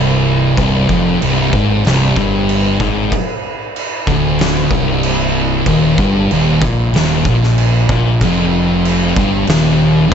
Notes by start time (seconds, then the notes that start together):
Already playing: C1 C2
0.57 C1 C2, kick, crash
0.89 F1 F2, kick
1.22 C1 C2, crash
1.52 G#1 G#2, kick
1.85 C1 C2, snare, crash
2.16 G1 G2, kick
2.49 crash
2.80 G#1 G#2, kick
3.12 kick, crash
3.76 crash
4.07 D1 D2, kick
4.39 snare, crash
4.70 C1 C2, kick
5.03 crash
5.66 D#1 D#2, kick, crash
5.98 G1 G2, kick
6.31 D#1 D#2, crash
6.62 A#1 A#2, kick
6.93 D#1 D#2, snare, crash
7.25 A#1 A#2, kick
7.44 snare
7.58 crash
7.89 A#1 A#2, kick
8.21 F1 F2, kick, crash
8.85 crash
9.16 G1 G2, kick
9.47 D#1 D#2, snare, crash